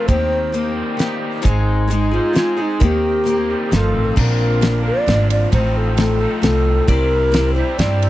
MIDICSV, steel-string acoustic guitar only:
0, 0, Header, 1, 2, 480
1, 0, Start_track
1, 0, Tempo, 453515
1, 91, Time_signature, 3, 2, 24, 8
1, 8568, End_track
2, 0, Start_track
2, 0, Title_t, "Steel-string acoustic guitar"
2, 0, Program_c, 0, 25
2, 83, Note_on_c, 0, 51, 75
2, 91, Note_on_c, 0, 58, 81
2, 93, Note_on_c, 0, 67, 90
2, 97, Note_on_c, 0, 60, 80
2, 541, Note_off_c, 0, 51, 0
2, 554, Note_on_c, 0, 51, 53
2, 558, Note_off_c, 0, 58, 0
2, 562, Note_off_c, 0, 60, 0
2, 565, Note_off_c, 0, 67, 0
2, 566, Note_on_c, 0, 60, 60
2, 570, Note_on_c, 0, 58, 57
2, 577, Note_on_c, 0, 67, 58
2, 1014, Note_off_c, 0, 51, 0
2, 1027, Note_on_c, 0, 51, 54
2, 1032, Note_off_c, 0, 58, 0
2, 1036, Note_off_c, 0, 67, 0
2, 1043, Note_off_c, 0, 60, 0
2, 1045, Note_on_c, 0, 58, 56
2, 1047, Note_on_c, 0, 60, 58
2, 1048, Note_on_c, 0, 67, 61
2, 1488, Note_off_c, 0, 51, 0
2, 1501, Note_on_c, 0, 51, 92
2, 1503, Note_off_c, 0, 58, 0
2, 1507, Note_off_c, 0, 60, 0
2, 1507, Note_on_c, 0, 60, 94
2, 1510, Note_on_c, 0, 44, 94
2, 1511, Note_on_c, 0, 63, 97
2, 1512, Note_on_c, 0, 56, 90
2, 1515, Note_off_c, 0, 67, 0
2, 1519, Note_on_c, 0, 68, 93
2, 1972, Note_off_c, 0, 56, 0
2, 1985, Note_on_c, 0, 56, 54
2, 1992, Note_off_c, 0, 60, 0
2, 1996, Note_off_c, 0, 51, 0
2, 1996, Note_on_c, 0, 60, 60
2, 1999, Note_off_c, 0, 68, 0
2, 2001, Note_off_c, 0, 44, 0
2, 2004, Note_off_c, 0, 63, 0
2, 2008, Note_on_c, 0, 63, 63
2, 2011, Note_on_c, 0, 68, 67
2, 2225, Note_off_c, 0, 68, 0
2, 2238, Note_off_c, 0, 63, 0
2, 2238, Note_on_c, 0, 68, 52
2, 2239, Note_off_c, 0, 56, 0
2, 2244, Note_off_c, 0, 60, 0
2, 2251, Note_on_c, 0, 63, 43
2, 2259, Note_on_c, 0, 56, 42
2, 2262, Note_on_c, 0, 60, 37
2, 2456, Note_off_c, 0, 56, 0
2, 2466, Note_off_c, 0, 60, 0
2, 2469, Note_on_c, 0, 56, 49
2, 2476, Note_off_c, 0, 63, 0
2, 2479, Note_on_c, 0, 60, 58
2, 2481, Note_off_c, 0, 68, 0
2, 2489, Note_on_c, 0, 63, 56
2, 2493, Note_on_c, 0, 68, 64
2, 2704, Note_off_c, 0, 68, 0
2, 2710, Note_off_c, 0, 63, 0
2, 2715, Note_off_c, 0, 60, 0
2, 2717, Note_on_c, 0, 68, 51
2, 2720, Note_off_c, 0, 56, 0
2, 2723, Note_on_c, 0, 63, 43
2, 2728, Note_on_c, 0, 60, 38
2, 2733, Note_on_c, 0, 56, 37
2, 2951, Note_off_c, 0, 60, 0
2, 2958, Note_off_c, 0, 56, 0
2, 2959, Note_off_c, 0, 63, 0
2, 2963, Note_on_c, 0, 51, 84
2, 2963, Note_on_c, 0, 60, 88
2, 2964, Note_off_c, 0, 68, 0
2, 2965, Note_on_c, 0, 58, 88
2, 2972, Note_on_c, 0, 67, 83
2, 3412, Note_off_c, 0, 51, 0
2, 3425, Note_on_c, 0, 51, 51
2, 3428, Note_off_c, 0, 58, 0
2, 3436, Note_off_c, 0, 67, 0
2, 3437, Note_off_c, 0, 60, 0
2, 3440, Note_on_c, 0, 58, 62
2, 3449, Note_on_c, 0, 67, 68
2, 3450, Note_on_c, 0, 60, 58
2, 3918, Note_off_c, 0, 51, 0
2, 3926, Note_off_c, 0, 58, 0
2, 3928, Note_on_c, 0, 51, 62
2, 3930, Note_off_c, 0, 60, 0
2, 3930, Note_off_c, 0, 67, 0
2, 3940, Note_on_c, 0, 57, 55
2, 3947, Note_on_c, 0, 63, 58
2, 3952, Note_on_c, 0, 65, 70
2, 4402, Note_on_c, 0, 46, 69
2, 4403, Note_off_c, 0, 65, 0
2, 4407, Note_off_c, 0, 57, 0
2, 4409, Note_off_c, 0, 51, 0
2, 4410, Note_off_c, 0, 63, 0
2, 4412, Note_on_c, 0, 62, 86
2, 4413, Note_on_c, 0, 58, 82
2, 4414, Note_on_c, 0, 60, 92
2, 4415, Note_on_c, 0, 65, 85
2, 4869, Note_off_c, 0, 58, 0
2, 4877, Note_off_c, 0, 62, 0
2, 4882, Note_on_c, 0, 58, 62
2, 4886, Note_off_c, 0, 46, 0
2, 4890, Note_on_c, 0, 62, 57
2, 4893, Note_off_c, 0, 65, 0
2, 4898, Note_off_c, 0, 60, 0
2, 4898, Note_on_c, 0, 65, 59
2, 4902, Note_on_c, 0, 60, 57
2, 5348, Note_off_c, 0, 58, 0
2, 5361, Note_off_c, 0, 62, 0
2, 5361, Note_on_c, 0, 58, 52
2, 5370, Note_off_c, 0, 65, 0
2, 5374, Note_on_c, 0, 62, 52
2, 5375, Note_off_c, 0, 60, 0
2, 5379, Note_on_c, 0, 60, 59
2, 5383, Note_on_c, 0, 65, 55
2, 5838, Note_off_c, 0, 62, 0
2, 5839, Note_off_c, 0, 65, 0
2, 5842, Note_off_c, 0, 58, 0
2, 5842, Note_on_c, 0, 63, 80
2, 5846, Note_on_c, 0, 57, 73
2, 5847, Note_off_c, 0, 60, 0
2, 5851, Note_on_c, 0, 60, 84
2, 5852, Note_on_c, 0, 65, 77
2, 6306, Note_off_c, 0, 57, 0
2, 6306, Note_off_c, 0, 63, 0
2, 6317, Note_off_c, 0, 65, 0
2, 6318, Note_off_c, 0, 60, 0
2, 6319, Note_on_c, 0, 57, 53
2, 6319, Note_on_c, 0, 63, 55
2, 6322, Note_on_c, 0, 60, 59
2, 6330, Note_on_c, 0, 65, 61
2, 6779, Note_off_c, 0, 57, 0
2, 6789, Note_off_c, 0, 63, 0
2, 6792, Note_on_c, 0, 57, 51
2, 6801, Note_on_c, 0, 63, 54
2, 6802, Note_off_c, 0, 60, 0
2, 6804, Note_off_c, 0, 65, 0
2, 6806, Note_on_c, 0, 60, 53
2, 6817, Note_on_c, 0, 65, 64
2, 7273, Note_off_c, 0, 57, 0
2, 7277, Note_off_c, 0, 60, 0
2, 7277, Note_on_c, 0, 60, 76
2, 7281, Note_off_c, 0, 63, 0
2, 7282, Note_off_c, 0, 65, 0
2, 7285, Note_on_c, 0, 64, 84
2, 7287, Note_on_c, 0, 74, 94
2, 7288, Note_on_c, 0, 67, 78
2, 7733, Note_off_c, 0, 64, 0
2, 7737, Note_off_c, 0, 60, 0
2, 7741, Note_on_c, 0, 60, 63
2, 7742, Note_off_c, 0, 67, 0
2, 7745, Note_on_c, 0, 64, 64
2, 7746, Note_on_c, 0, 67, 63
2, 7750, Note_off_c, 0, 74, 0
2, 7763, Note_on_c, 0, 74, 66
2, 7973, Note_off_c, 0, 74, 0
2, 7985, Note_on_c, 0, 74, 52
2, 7988, Note_off_c, 0, 64, 0
2, 7990, Note_off_c, 0, 67, 0
2, 7996, Note_off_c, 0, 60, 0
2, 8001, Note_on_c, 0, 64, 43
2, 8003, Note_on_c, 0, 67, 42
2, 8227, Note_off_c, 0, 64, 0
2, 8231, Note_off_c, 0, 67, 0
2, 8237, Note_on_c, 0, 60, 56
2, 8238, Note_off_c, 0, 74, 0
2, 8240, Note_on_c, 0, 64, 62
2, 8244, Note_on_c, 0, 67, 59
2, 8250, Note_on_c, 0, 74, 60
2, 8568, Note_off_c, 0, 60, 0
2, 8568, Note_off_c, 0, 64, 0
2, 8568, Note_off_c, 0, 67, 0
2, 8568, Note_off_c, 0, 74, 0
2, 8568, End_track
0, 0, End_of_file